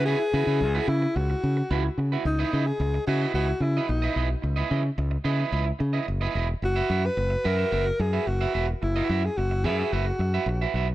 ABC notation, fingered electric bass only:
X:1
M:4/4
L:1/16
Q:1/4=109
K:C#dor
V:1 name="Fingered electric bass" clef=bass
C,2 C, C, C,,2 C,2 C,,2 C,2 C,,2 C,2 | C,,2 C,2 C,,2 C,2 C,,2 C,2 A,,,2 B,,,2 | C,,2 C,2 C,,2 C,2 C,,2 C,2 F,,,2 E,,,2 | F,,,2 F,,2 F,,,2 F,,2 F,,,2 F,,2 F,,,2 E,,,2 |
F,,,2 F,,2 F,,,2 F,,2 F,,,2 F,,2 A,,,2 B,,,2 |]